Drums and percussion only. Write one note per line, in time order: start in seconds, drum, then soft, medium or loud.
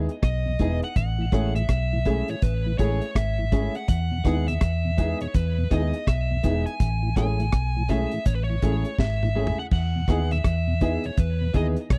0.09 closed hi-hat medium
0.23 kick loud
0.23 cross-stick loud
0.23 closed hi-hat medium
0.59 kick medium
0.59 closed hi-hat medium
0.82 closed hi-hat soft
0.96 kick loud
0.96 closed hi-hat loud
1.32 kick medium
1.32 cross-stick medium
1.32 closed hi-hat medium
1.56 closed hi-hat medium
1.69 kick loud
1.69 cross-stick loud
1.69 closed hi-hat medium
2.05 kick medium
2.05 closed hi-hat medium
2.28 closed hi-hat medium
2.42 kick loud
2.42 closed hi-hat loud
2.79 kick medium
2.79 closed hi-hat medium
3.02 closed hi-hat soft
3.15 kick loud
3.15 cross-stick loud
3.15 closed hi-hat medium
3.52 kick medium
3.52 closed hi-hat medium
3.75 closed hi-hat soft
3.88 kick loud
3.88 closed hi-hat loud
4.25 kick medium
4.25 cross-stick medium
4.25 closed hi-hat medium
4.48 closed hi-hat medium
4.61 kick loud
4.61 cross-stick loud
4.61 closed hi-hat medium
4.98 kick medium
4.98 closed hi-hat medium
5.21 closed hi-hat medium
5.34 kick loud
5.34 closed hi-hat loud
5.71 kick medium
5.71 closed hi-hat medium
5.93 closed hi-hat medium
6.07 kick loud
6.07 cross-stick loud
6.07 closed hi-hat medium
6.44 kick medium
6.44 closed hi-hat medium
6.67 closed hi-hat medium
6.80 kick loud
6.80 closed hi-hat loud
7.16 kick medium
7.16 cross-stick medium
7.16 closed hi-hat medium
7.40 closed hi-hat medium
7.52 kick loud
7.52 cross-stick loud
7.52 closed hi-hat medium
7.89 kick medium
7.89 closed hi-hat medium
8.11 closed hi-hat medium
8.26 kick loud
8.26 closed hi-hat loud
8.62 kick medium
8.62 closed hi-hat medium
8.85 closed hi-hat medium
8.99 kick loud
8.99 snare medium
9.23 mid tom medium
9.47 floor tom loud
9.71 kick loud
9.71 crash medium
10.08 kick medium
10.08 cross-stick medium
10.08 closed hi-hat medium
10.31 closed hi-hat medium
10.44 kick loud
10.44 cross-stick loud
10.44 closed hi-hat medium
10.81 kick medium
10.81 closed hi-hat medium
11.04 closed hi-hat medium
11.17 kick loud
11.17 closed hi-hat loud
11.54 kick medium
11.54 closed hi-hat medium
11.76 closed hi-hat medium
11.90 kick loud
11.90 cross-stick loud
11.90 closed hi-hat medium